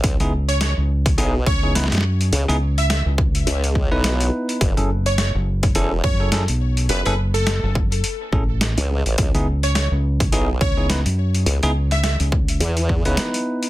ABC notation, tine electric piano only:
X:1
M:4/4
L:1/16
Q:"Swing 16ths" 1/4=105
K:C#m
V:1 name="Tine electric piano"
z [B,DEG] z6 [B,DEG] z2 [B,DEG] [B,DEB] z3 | z [B,DEG] z8 z [B,DEB]4- [B,DEB] | z [CEGA] z6 [CEGA] z2 [CEGA] [CEGA] z3 | z [CEGA] z8 [CEGA] z4 z |
z [B,DEG] z6 [B,DEG] z2 [B,DEG] [B,DEB] z3 | z [B,DEG] z8 z [B,DEB]4- [B,DEB] |]